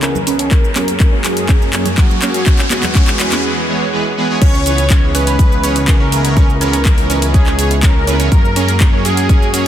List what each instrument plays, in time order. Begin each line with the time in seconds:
Already playing: analog synth pad C#2 C#3 E3 B3 D#4, riser
0.02 supersaw synth E3 B3 C#4 G#4 B4, synth pluck C#4, analog synth lead A#4, clap, closed hi-hat, shaker
0.15 low conga, shaker
0.27 supersaw synth E3 B3 C#4 G#4 B4, synth pluck C#4, open hi-hat, shaker
0.39 supersaw synth E3 B3 C#4 G#4 C#5, synth pluck C#4, closed hi-hat, high woodblock, shaker
0.51 analog synth pad F#2 F#3 G#3 C#4 A#4, supersaw synth A#3, analog synth lead A#4, kick, clap, closed hi-hat, shaker
0.64 shaker
0.76 supersaw synth F#3 A#3 C#4 G#4 A#4, synth pluck C#4, clap, open hi-hat, high conga, shaker
0.88 closed hi-hat, shaker
1.00 supersaw synth F#3 A#3 C#4 G#4, synth pluck C#4, kick, clap, closed hi-hat, shaker
1.12 synth pluck C#4
1.24 supersaw synth F#3 A#3 C#4 G#4 A#4, analog synth lead G#4, clap, open hi-hat, shaker
1.37 supersaw synth F#3 A#3 C#4 G#4 A#4, closed hi-hat, shaker
1.49 synth pluck C#4, kick, clap, closed hi-hat, shaker
1.62 shaker
1.73 supersaw synth F#3 A#3 C#4 G#4 C#5, synth pluck C#4, clap, open hi-hat, shaker
1.85 synth pluck C#4, closed hi-hat, low conga, shaker
1.98 supersaw synth F#3 A#3 C#4 G#4 A#4, analog synth lead F#4, kick, clap, closed hi-hat, shaker
2.09 low conga, shaker
2.22 supersaw synth F#3 A#3 C#4 G#4 A#4, synth pluck C#4, clap, open hi-hat, shaker
2.34 supersaw synth F#3 A#3 C#4 G#4 C#5, closed hi-hat, shaker
2.46 analog synth pad E2 E3 B3 B4, supersaw synth E3 G#3 B3 B4, synth pluck C#4, kick, clap, closed hi-hat, shaker
2.59 synth pluck C#4, clap, shaker
2.70 supersaw synth E3 G#3 B3 G#4 B4, analog synth lead F#4, clap, open hi-hat, high conga, shaker
2.83 clap, closed hi-hat, low conga, shaker
2.95 supersaw synth E3 G#3 B3 G#4 C#5, synth pluck C#4, kick, clap, closed hi-hat, shaker
3.08 clap, shaker
3.20 supersaw synth E3 G#3 B3 G#4 B4, synth pluck C#4, clap, open hi-hat, shaker
3.32 supersaw synth E3 G#3 B3 G#4 B4, synth pluck C#4, clap, closed hi-hat, high conga, shaker
3.44 supersaw synth E3 G#3 B3 G#4 B4
3.68 supersaw synth E3 G#3 B3 G#4 C#5
3.93 supersaw synth E3 G#3 B3 G#4 B4
4.17 supersaw synth E3 G#3 B3 G#4 B4
4.29 supersaw synth E3 G#3 B3 G#4 C#5
4.42 analog synth bass C#2, analog synth pad C#3 G#3 B3 D#4 E4, synth pluck C#4 C#5, analog synth lead C#5, violin section C#5, kick, closed hi-hat, crash, shaker
4.54 synth pluck C#4 C#5, shaker
4.66 supersaw synth E3 B3 C#4 G#4 B4, open hi-hat, shaker
4.78 closed hi-hat, shaker
4.90 supersaw synth B3 C#4 G#4 C#5, synth pluck C#4 C#5, kick, clap, closed hi-hat, shaker
5.15 supersaw synth E3 B3 C#4 G#4 B4, synth pluck C#4 C#5, violin section B4, analog synth lead B4, open hi-hat, shaker
5.27 supersaw synth E3 B3 C#4 G#4 B4, synth pluck C#4 C#5, closed hi-hat, shaker
5.39 supersaw synth E3 B3 C#4 G#4 B4, kick, closed hi-hat, shaker
5.52 shaker
5.63 supersaw synth E3 B3 C#4 G#4 C#5, synth pluck C#4 C#5, open hi-hat, shaker
5.76 closed hi-hat, shaker
5.88 supersaw synth E3 B3 C#4 G#4 B4, synth pluck C#4 C#5, analog synth lead A#4, violin section A#4, kick, clap, closed hi-hat, shaker
6.00 synth pluck C#4 C#5
6.12 supersaw synth E3 B3 C#4 G#4 B4, open hi-hat, shaker
6.25 supersaw synth E3 B3 C#4 G#4 C#5, closed hi-hat, shaker
6.37 supersaw synth E3 C#4 G#4, synth pluck C#4 C#5, kick, closed hi-hat, shaker
6.50 shaker
6.61 supersaw synth E3 B3 C#4 G#4 B4, synth pluck C#4 C#5, analog synth lead A#4, violin section A#4, open hi-hat, shaker
6.73 synth pluck C#4 C#5, closed hi-hat, shaker
6.85 supersaw synth E3 B3 G#4 C#5, kick, clap, closed hi-hat, shaker
6.98 open hi-hat
7.10 supersaw synth E3 B3 C#4 G#4 B4, synth pluck C#4 C#5, open hi-hat, shaker
7.22 supersaw synth E3 B3 C#4 G#4 B4, closed hi-hat, shaker
7.34 supersaw synth E3 B3 C#4 G#4 B4, synth pluck C#4 C#5, analog synth lead G#4, violin section G#4, kick, closed hi-hat, shaker
7.46 synth pluck C#4 C#5, clap, shaker
7.59 supersaw synth E3 B3 C#4 G#4 C#5, open hi-hat, shaker
7.71 closed hi-hat, shaker
7.83 supersaw synth B3 C#4 G#4 B4, synth pluck C#4 C#5, analog synth lead A#4, violin section A#4, kick, clap, closed hi-hat, shaker
8.07 supersaw synth E3 B3 C#4 G#4 B4, synth pluck C#4 C#5, open hi-hat, shaker
8.20 supersaw synth E3 B3 C#4 G#4 C#5, synth pluck C#4 C#5, closed hi-hat, shaker
8.32 analog synth bass F#2, supersaw synth F#3 A#3 C#4, analog synth pad A#3 F#4, violin section A#4, analog synth lead A#4, kick, closed hi-hat, shaker
8.45 shaker
8.56 supersaw synth F#3 A#3 C#4 G#4 A#4, synth pluck C#4 C#5, open hi-hat, shaker
8.69 closed hi-hat, shaker
8.80 supersaw synth F#3 A#3 C#4 G#4 C#5, synth pluck C#4 C#5, kick, clap, closed hi-hat, shaker
8.93 synth pluck C#4 C#5
9.05 supersaw synth F#3 A#3 C#4 G#4 A#4, violin section G#4, analog synth lead G#4, open hi-hat, shaker
9.17 supersaw synth F#3 A#3 C#4 G#4 A#4, closed hi-hat, shaker
9.29 supersaw synth F#3 A#3 C#4 G#4 A#4, synth pluck C#4 C#5, kick, closed hi-hat, shaker
9.42 shaker
9.54 supersaw synth F#3 A#3 C#4 G#4 C#5, synth pluck C#4 C#5, open hi-hat, shaker